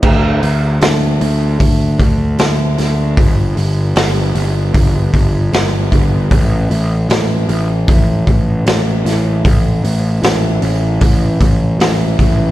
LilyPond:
<<
  \new Staff \with { instrumentName = "Picked electric bass" } { \clef bass \time 4/4 \key a \mixolydian \tempo 4 = 76 d,8 d,8 d,8 d,8 d,8 d,8 d,8 d,8 | g,,8 g,,8 g,,8 g,,8 g,,8 g,,8 g,,8 g,,8 | a,,8 a,,8 a,,8 a,,8 a,,8 a,,8 a,,8 a,,8 | a,,8 a,,8 a,,8 a,,8 a,,8 a,,8 a,,8 a,,8 | }
  \new DrumStaff \with { instrumentName = "Drums" } \drummode { \time 4/4 <cymc bd>8 hho8 <hho sn>8 hho8 <hho bd>8 <hho bd>8 <hho sn>8 <hho sn>8 | <hho bd>8 hho8 <hho sn>8 hho8 <hho bd>8 <hho bd>8 <hho sn>8 <hho bd>8 | <hho bd>8 hho8 <hho sn>8 hho8 <hho bd>8 <hho bd>8 <hho sn>8 <hho sn>8 | <hho bd>8 hho8 <hho sn>8 hho8 <hho bd>8 <hho bd>8 <hho sn>8 <hho bd>8 | }
>>